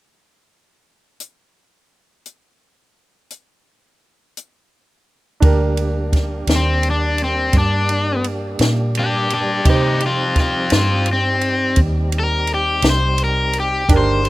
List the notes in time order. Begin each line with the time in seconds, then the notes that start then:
1.20 closed hi-hat
2.26 closed hi-hat
3.30 closed hi-hat
4.37 closed hi-hat
5.40 D2 G3 A#3 D4 G4 A#4, kick, ride
5.77 ride
6.13 kick, snare, ride
6.47 D#2, snare, ride
6.56 C4
6.83 ride
6.90 D4
7.18 ride
7.24 C4
7.53 G2, kick, ride
7.58 D4
7.89 ride
8.24 ride
8.59 A#2, snare, ride
8.95 ride
8.99 D4 G4
9.30 D4 G4, ride
9.64 C3 G3 C4 D#4 G4, kick, ride
9.69 D#4 G4 C5
10.00 ride
10.06 C4 F4
10.36 kick, snare, ride
10.40 C4 F4
10.70 G2, snare, ride
10.76 C4 F4
11.06 ride
11.13 C4
11.41 ride
11.76 D#2, kick, ride
12.12 ride
12.19 A#4
12.47 ride
12.54 G4
12.82 C2, snare, ride
12.90 C5
13.18 ride
13.24 A#4
13.53 ride
13.60 G4
13.88 G1 D#3 G#3 A#3 D4 G4, kick, ride
13.92 A#4
13.97 C5
14.24 G3 A#3 D4 G4, ride